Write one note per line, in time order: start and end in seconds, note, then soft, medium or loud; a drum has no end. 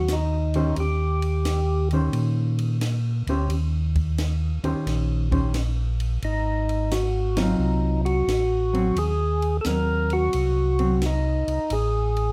0.00 0.74 D#2 medium
0.00 0.15 F#4 medium
0.08 snare medium
0.08 hi-hat pedal medium
0.08 ride medium
0.13 0.76 D#4 medium
0.54 0.76 D#3 medium
0.54 0.76 C#4 medium
0.54 0.76 G4 medium
0.54 0.76 C5 medium
0.54 ride soft
0.76 2.10 D#2 medium
0.76 1.89 G4 medium
0.76 ride medium
1.22 ride soft
1.45 snare medium
1.45 hi-hat pedal medium
1.45 ride medium
1.91 2.78 D#3 medium
1.91 2.79 C#4 medium
1.91 2.79 G4 medium
1.91 2.79 C5 medium
1.91 ride soft
2.13 3.23 A#2 medium
2.13 ride medium
2.59 ride soft
2.81 snare medium
2.81 hi-hat pedal soft
2.81 ride medium
3.26 3.48 D2 medium
3.26 3.49 C#4 medium
3.26 3.49 G4 medium
3.26 3.49 C5 medium
3.26 ride soft
3.49 4.59 D#2 medium
3.49 ride medium
3.95 kick medium
3.95 ride soft
4.18 snare medium
4.18 hi-hat pedal soft
4.18 ride medium
4.64 4.75 D#2 soft
4.64 5.28 D#3 medium
4.64 5.28 C#4 medium
4.64 5.28 G4 medium
4.64 5.28 C5 medium
4.64 ride soft
4.86 6.19 A#1 medium
4.86 snare soft
4.86 ride medium
5.31 5.52 D#3 soft
5.31 5.53 C#4 medium
5.31 5.53 G4 medium
5.31 5.53 C5 medium
5.31 kick soft
5.31 ride soft
5.54 snare medium
5.54 hi-hat pedal medium
5.54 ride medium
6.00 ride soft
6.22 7.55 G#1 medium
6.22 6.94 D#4 medium
6.22 ride medium
6.69 ride soft
6.91 7.39 F#4 medium
6.91 snare medium
6.91 hi-hat pedal medium
6.91 ride medium
7.37 8.24 F#3 medium
7.37 8.24 C4 medium
7.37 8.01 D#4 medium
7.37 8.24 F4 medium
7.37 snare medium
7.37 ride medium
7.59 8.24 C2 medium
8.05 8.99 F#4 medium
8.05 ride soft
8.27 8.92 A1 medium
8.27 snare medium
8.27 hi-hat pedal medium
8.27 ride medium
8.73 8.94 F#3 medium
8.73 8.95 C4 medium
8.73 ride soft
8.96 9.61 D#2 medium
8.96 9.57 G#4 loud
8.96 ride medium
9.42 ride soft
9.61 10.29 D#2 medium
9.61 10.70 F#3 soft
9.61 9.65 A4 medium
9.61 snare medium
9.61 hi-hat pedal medium
9.61 ride medium
9.66 10.70 C4 soft
9.66 10.13 A#4 loud
10.10 11.06 F#4 loud
10.10 ride soft
10.33 11.44 C2 medium
10.33 ride medium
10.79 11.00 F#3 medium
10.79 11.00 C4 medium
10.79 ride soft
11.02 snare medium
11.02 hi-hat pedal medium
11.02 ride medium
11.06 11.74 D#4 medium
11.48 11.59 C2 soft
11.48 ride soft
11.70 12.32 A1 medium
11.70 12.32 G#4 medium
11.70 ride medium
12.16 ride soft